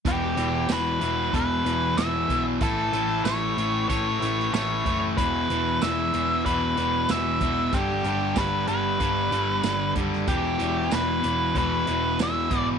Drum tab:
HH |x-x-x-x-x-x-x-x-|x-x-x-x-x-x-x-x-|x-x-x-x-x-x-x-x-|x-x-x-x-x-x-x-x-|
TB |----x-------x---|----x-------x---|----x-------x---|----x-------x---|
SD |----o-------o---|----o------oo---|----o-------o---|----o-------o--o|
BD |o-------o-----o-|o-------o-----o-|o-------o-----o-|o---o---o-----o-|

HH |x-x-x-x-x-x-x-x-|
TB |----x-------x---|
SD |----o-------o---|
BD |o-------o-----o-|